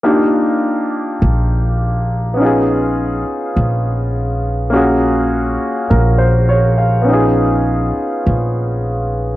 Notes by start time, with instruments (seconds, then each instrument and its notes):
0.03 grand piano A#3 D4 D#4 F4 G4
1.22 upright bass A#1
2.34 grand piano B3 C#4
2.40 grand piano D#4 F4
2.45 grand piano G#4
3.57 upright bass A#1
4.70 grand piano A#3 C#4 F4 F#4
4.76 grand piano G#4
5.90 upright bass A#1, grand piano A#4
6.18 grand piano C5
6.49 grand piano C#5
6.78 grand piano F5
7.02 grand piano B3 C#4
7.08 grand piano D#4 F4
7.13 grand piano G#4
8.26 upright bass A#1